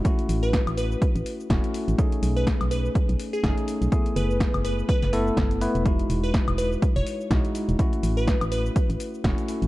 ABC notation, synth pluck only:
X:1
M:4/4
L:1/16
Q:"Swing 16ths" 1/4=124
K:Alyd
V:1 name="Synth pluck"
z3 B z2 B6 z4 | z3 B z2 B z4 G G z3 | z2 B4 B z B B z6 | z3 B z2 B z2 c z6 |
z3 B z2 B6 z4 |]